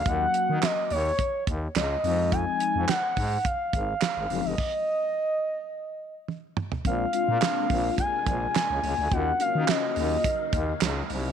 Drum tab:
CC |----------------|----------------|x---------------|----------------|
HH |x-x-x-o-x-x-x-o-|x-x-x-o-x-x-x-o-|----------------|x-x-x-o-x-x-x-o-|
CP |----x-------x---|----x-------x---|----------------|----x-------x---|
SD |----o-------o---|----o-------o---|----------------|----o-------o---|
T1 |----------------|----------------|------------o---|----------------|
T2 |----------------|----------------|--------------o-|----------------|
FT |----------------|----------------|---------------o|----------------|
BD |o-------o-o-----|o-----o-o-o-----|o---------------|o-----o-o-o-----|

CC |----------------|
HH |x-x-x-o-x-x-x-o-|
CP |----x-------x---|
SD |----o-------o---|
T1 |----------------|
T2 |----------------|
FT |----------------|
BD |o-------o-o-----|